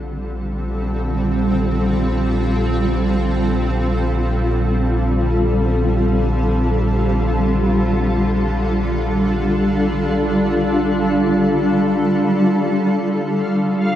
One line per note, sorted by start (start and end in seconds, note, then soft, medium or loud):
0.00 13.23 A#1 medium
0.00 13.96 D3 medium
0.00 13.96 G3 medium
0.00 7.67 C4 medium
0.00 13.96 F4 medium
0.00 13.96 A4 medium
7.39 13.96 D4 medium
13.28 13.96 F5 medium
13.28 13.96 F6 medium